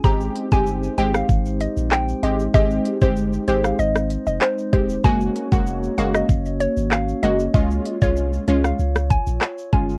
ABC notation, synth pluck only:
X:1
M:4/4
L:1/16
Q:1/4=96
K:Ab
V:1 name="Synth pluck"
b z2 a z2 g f z2 e z g z e z | e z2 c z2 c f e z2 e c z c z | a z2 _g z2 f e z2 d z f z e z | e z2 d z2 d f z2 a z3 a z |]